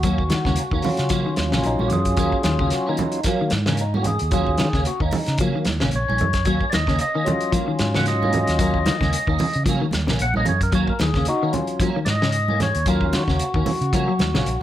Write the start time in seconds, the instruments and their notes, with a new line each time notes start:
Already playing: fingered electric bass D#2, tonewheel organ F#4
0.03 clean electric guitar F#3 A#3 C#4, kick, closed hi-hat
0.18 kick
0.30 clean electric guitar D#3, fingered electric bass D#3, snare, closed hi-hat, high conga
0.45 fingered electric bass D#2, clean electric guitar C#3 A#3 C#4, kick, snare, high conga
0.56 closed hi-hat
0.71 fingered electric bass D#2, clean electric guitar D#3 A#3 C#4, kick
0.82 tonewheel organ F#3 C#4 F4, muted fingered electric bass stroke, open hi-hat, high conga, low conga
0.97 fingered electric bass C#3, snare, closed hi-hat
1.09 clean electric guitar F3 F#3 A#3 C#4, kick, snare, closed hi-hat
1.26 clean electric guitar D#3
1.36 fingered electric bass D#2, snare, closed hi-hat, high conga
1.52 fingered electric bass A#1, clean electric guitar C#3 A#3 C#4, snare, low conga
1.64 fingered electric bass A#1, tonewheel organ D#4, closed hi-hat
1.79 fingered electric bass A#1, clean electric guitar A#3 C#4, tonewheel organ F#4, high conga
1.88 fingered electric bass F#2, tonewheel organ G4, closed hi-hat
1.92 tonewheel organ G#4, low conga
2.05 kick, closed hi-hat
2.17 fingered electric bass D#2, clean electric guitar F#3 A#3 C#4, kick, closed hi-hat
2.32 kick
2.43 fingered electric bass D#2, clean electric guitar D#3, tonewheel organ F#3 C#4 F4, snare, closed hi-hat, high conga
2.59 clean electric guitar C#3 A#3 C#4, kick
2.70 tonewheel organ F#4, snare, closed hi-hat
2.86 clean electric guitar D#3 A#3 C#4, tonewheel organ D#4
2.97 closed hi-hat, high conga, low conga
3.12 closed hi-hat
3.23 clean electric guitar F3 F#3 A#3 C#4, kick, snare, closed hi-hat
3.28 tonewheel organ F#3 A#3
3.41 clean electric guitar D#3
3.50 fingered electric bass G#2, snare, closed hi-hat, high conga
3.66 clean electric guitar C#3 A#3 C#4, snare, low conga
3.77 tonewheel organ D#4, closed hi-hat
3.94 clean electric guitar A#3 C#4, tonewheel organ F#4, high conga
4.02 tonewheel organ G4, closed hi-hat, low conga
4.07 tonewheel organ G#4
4.19 fingered electric bass D#2, closed hi-hat
4.31 tonewheel organ F#3 C#4 F4, clean electric guitar F#3 A#3 C#4, kick, closed hi-hat
4.47 kick
4.58 clean electric guitar D#3, fingered electric bass D#3, snare, closed hi-hat, high conga
4.73 fingered electric bass D#2, clean electric guitar C#3 A#3 C#4, kick, snare
4.85 tonewheel organ F#4, closed hi-hat
5.00 fingered electric bass D#2, clean electric guitar D#3 A#3 C#4, tonewheel organ D#4, kick
5.11 muted fingered electric bass stroke, open hi-hat, high conga, low conga
5.26 fingered electric bass C#3, snare, closed hi-hat
5.38 clean electric guitar F3 F#3 A#3 C#4, tonewheel organ F#3 A#3, kick, closed hi-hat
5.56 clean electric guitar D#3
5.65 fingered electric bass D#2, snare, closed hi-hat, high conga
5.80 fingered electric bass A#1, clean electric guitar C#3 A#3 C#4, snare, low conga
5.91 fingered electric bass A#1, closed hi-hat
5.96 tonewheel organ C#5
6.08 fingered electric bass A#1, clean electric guitar C#4, muted clean electric guitar stroke, high conga
6.18 fingered electric bass F#2, closed hi-hat, high conga, low conga
6.33 kick, snare, closed hi-hat
6.45 fingered electric bass D#2, clean electric guitar F#3 A#3 C#4, kick, closed hi-hat
6.61 kick
6.70 tonewheel organ D5, snare, closed hi-hat, high conga
6.74 fingered electric bass D#2, clean electric guitar D#3, tonewheel organ D#5
6.87 clean electric guitar C#3 A#3 C#4, kick, snare
6.99 tonewheel organ D#5, closed hi-hat
7.15 clean electric guitar D#3 A#3 C#4
7.25 tonewheel organ F#3 C#4 F4, closed hi-hat, high conga, low conga
7.41 closed hi-hat
7.52 clean electric guitar F3 F#3 A#3, muted clean electric guitar stroke, kick, closed hi-hat, high conga
7.68 clean electric guitar D#3
7.79 fingered electric bass G#2, snare, closed hi-hat, high conga
7.94 clean electric guitar C#3 A#3 C#4, tonewheel organ F#5, snare, low conga
8.06 tonewheel organ D#5, snare, closed hi-hat
8.22 clean electric guitar A#3 C#4, high conga
8.33 closed hi-hat, low conga
8.47 fingered electric bass D#2, snare, closed hi-hat
8.59 tonewheel organ F#3 C#4 F4, clean electric guitar F#3 A#3 C#4, kick, closed hi-hat
8.74 kick
8.86 clean electric guitar D#3, fingered electric bass D#3, snare, closed hi-hat, high conga
9.01 fingered electric bass D#2, clean electric guitar C#3 A#3 C#4, kick, snare, high conga
9.13 closed hi-hat
9.27 fingered electric bass D#2, clean electric guitar D#3 A#3 C#4, kick
9.39 muted fingered electric bass stroke, open hi-hat, high conga, low conga
9.53 fingered electric bass C#3, closed hi-hat
9.66 clean electric guitar F3 F#3 A#3 C#4, kick, closed hi-hat, high conga
9.82 clean electric guitar D#3
9.91 fingered electric bass D#2, snare, closed hi-hat, high conga
10.07 fingered electric bass A#1, clean electric guitar C#3 A#3 C#4, snare, low conga
10.19 fingered electric bass A#1, tonewheel organ F#5, closed hi-hat
10.34 fingered electric bass A#1, clean electric guitar A#3 C#4, tonewheel organ D#5, high conga
10.45 fingered electric bass F#2, tonewheel organ C#5, closed hi-hat, low conga
10.61 tonewheel organ A#4, kick, closed hi-hat
10.72 fingered electric bass D#2, clean electric guitar F#3 A#3 C#4, tonewheel organ C#5, kick, closed hi-hat
10.87 tonewheel organ A#4, kick
10.99 fingered electric bass D#2, clean electric guitar D#3, tonewheel organ G#4, snare, closed hi-hat, high conga
11.14 clean electric guitar C#3 A#3 C#4, kick, snare
11.25 tonewheel organ D#4, closed hi-hat
11.29 tonewheel organ F#4
11.43 clean electric guitar D#3 A#3 C#4
11.53 tonewheel organ F#3 C#4 F4, closed hi-hat, high conga, low conga
11.67 closed hi-hat
11.80 clean electric guitar F3 F#3 A#3 C#4, kick, closed hi-hat, high conga
11.96 clean electric guitar D#3
12.05 fingered electric bass G#2, tonewheel organ D5, snare, closed hi-hat, high conga
12.10 tonewheel organ D#5
12.22 clean electric guitar C#3 C#4, snare
12.32 closed hi-hat
12.48 clean electric guitar A#3 C#4, high conga
12.60 tonewheel organ C#5, snare, closed hi-hat, high conga, low conga
12.75 fingered electric bass D#2, closed hi-hat
12.86 tonewheel organ F#3 C#4 F4 A#4, clean electric guitar F#3 A#3 C#4, kick, closed hi-hat
13.01 kick
13.13 fingered electric bass D#3, snare, closed hi-hat, high conga
13.18 tonewheel organ F#4
13.28 fingered electric bass D#2, clean electric guitar C#3 A#3 C#4, kick, snare
13.39 closed hi-hat
13.54 fingered electric bass D#2, clean electric guitar D#3 A#3 C#4, kick
13.66 muted fingered electric bass stroke, open hi-hat, high conga, low conga
13.81 fingered electric bass C#3, closed hi-hat
13.93 clean electric guitar F3 F#3 A#3 C#4, kick, closed hi-hat, high conga
14.08 clean electric guitar F#3
14.19 fingered electric bass D#2, snare, closed hi-hat, high conga
14.34 fingered electric bass A#1, clean electric guitar C#3 A#3 C#4, snare, low conga
14.46 fingered electric bass A#1, closed hi-hat